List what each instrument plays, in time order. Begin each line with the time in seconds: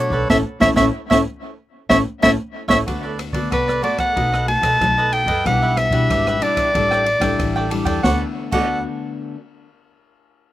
Already playing: nylon-string guitar F#3 A3 D4 F#4, cavaquinho D4 A4 B4
0.00 soprano saxophone C#5, cavaquinho D5
0.10 upright bass B1, cavaquinho A4 B4 D5, kick
0.30 upright bass A1, nylon-string guitar A3 C#4 E4, cavaquinho A4 C#5 E5, soprano saxophone E5, kick, snare
0.60 upright bass A1, nylon-string guitar A3 C#4 E4, cavaquinho A4 C#5 E5, soprano saxophone E5, kick, snare
0.74 upright bass A1, nylon-string guitar A3 C#4 E4, cavaquinho A4 C#5 E5, soprano saxophone E5, kick, snare
1.10 upright bass A1, nylon-string guitar A3 C#4 E4, cavaquinho A4 C#5 E5, soprano saxophone E5, kick, snare
1.89 upright bass A1, nylon-string guitar A3 C#4 E4, cavaquinho A4 C#5 E5, soprano saxophone E5, kick, snare
2.22 upright bass A1, nylon-string guitar A3 C#4 E4, cavaquinho A4 C#5 E5, soprano saxophone E5, kick, snare
2.68 upright bass A1, nylon-string guitar A3 C#4 E4, cavaquinho A4 C#5 E5, soprano saxophone E5, kick, snare
2.86 upright bass D2, nylon-string guitar D3 A3 B3 F#4, cavaquinho F#4 A4 B4 D5, kick, cross-stick, ride
3.03 cavaquinho A4 B4 D5
3.18 muted cavaquinho stroke, cross-stick, ride
3.33 upright bass D3, nylon-string guitar A3 B3 F#4, cavaquinho A4 B4 D5, kick, ride
3.51 upright bass C2, nylon-string guitar A2, cavaquinho F#4 A4 B4 D5, soprano saxophone B4, kick, cross-stick, ride
3.68 cavaquinho A4 B4 D5, cross-stick
3.82 nylon-string guitar A3 B3 F#4, cavaquinho F#4 A4 B4 D5, soprano saxophone D5, ride
3.98 soprano saxophone F#5, kick, cross-stick, ride
4.15 upright bass B1, nylon-string guitar B2 A3 D#4 F#4, cavaquinho D#4 A4 B4 D#5, kick, ride
4.32 cavaquinho A4 B4 D#5, cross-stick
4.48 nylon-string guitar A3 D#4 F#4, soprano saxophone A5, muted cavaquinho stroke, ride
4.62 upright bass B1, cavaquinho A4 B4 D#5, kick, cross-stick, ride
4.80 upright bass B1, nylon-string guitar F#3 A3 D#4 F#4, kick, cross-stick, ride
4.98 cavaquinho A4 B4 D#5
5.12 cavaquinho D#4 A4 D#5, soprano saxophone G5, ride
5.26 upright bass F#2, cavaquinho A4 B4 D#5, kick, ride
5.45 upright bass B1, nylon-string guitar B2 G3 D4 E4, cavaquinho D4 G4 B4 E5, soprano saxophone F#5, kick, cross-stick, ride
5.62 cavaquinho G4 B4 E5
5.77 soprano saxophone E5, muted cavaquinho stroke, cross-stick, ride
5.91 upright bass B2, nylon-string guitar G3 D4 E4, cavaquinho G4 B4 E5, kick, ride
6.10 upright bass G#1, nylon-string guitar B2, cavaquinho D4 G4 B4 E5, kick, cross-stick, ride
6.27 cavaquinho G4 B4 E5, cross-stick
6.41 nylon-string guitar G3 D4 E4, cavaquinho D4 G4 B4 E5, soprano saxophone D5, ride
6.57 kick, cross-stick, ride
6.74 upright bass A1, nylon-string guitar A2 G3 D4 E4, cavaquinho D4 A4 D5 G5, kick, ride
6.91 cavaquinho A4 D5 G5, cross-stick
7.06 muted cavaquinho stroke, ride
7.20 upright bass A1, nylon-string guitar G3 D4 E4, cavaquinho A4 D5 G5, kick, cross-stick, ride
7.39 upright bass A1, nylon-string guitar E3, kick, cross-stick, ride
7.56 cavaquinho A4 D5 G5
7.70 nylon-string guitar G3 D4 E4, cavaquinho D4 A4 D5 G5, ride
7.84 upright bass E2, cavaquinho A4 D5 G5, kick, ride
8.03 upright bass D2, nylon-string guitar D3 A3 B3 F#4, cavaquinho F#4 A4 B4 D5, soprano saxophone F#5, kick, snare
8.52 upright bass D2, nylon-string guitar D3 A3 B3 F#4, cavaquinho F#4 A4 B4 D5, soprano saxophone F#5, kick, crash